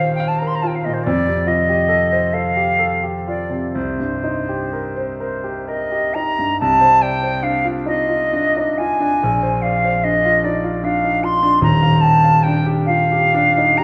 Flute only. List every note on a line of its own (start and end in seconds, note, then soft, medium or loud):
0.00 0.14 F5 loud
0.15 0.29 G5 medium
0.28 0.40 A5 medium
0.38 0.49 A#5 medium
0.47 0.57 C6 medium
0.55 0.63 A#5 medium
0.62 0.69 A5 medium
0.67 0.77 G5 medium
0.75 0.86 F5 medium
0.85 0.95 D#5 medium
0.94 1.05 C5 medium
1.04 1.49 D5 medium
1.48 2.35 D#5 medium
2.33 3.05 F5 medium
3.28 3.76 D5 medium
3.75 5.18 C5 medium
5.18 5.69 C5 medium
5.68 6.15 D#5 medium
6.14 6.59 A#5 medium
6.60 7.03 A5 medium
7.02 7.45 G5 medium
7.43 7.67 F5 medium
7.87 8.79 D#5 loud
8.78 9.63 G#5 medium
9.62 10.05 F5 medium
10.04 10.46 D#5 medium
10.44 10.86 D5 medium
10.84 11.26 F5 medium
11.24 11.62 C6 medium
11.63 12.02 A#5 medium
12.01 12.45 A5 medium
12.43 12.67 G5 medium
12.86 13.79 F5 loud
13.78 13.84 A#5 loud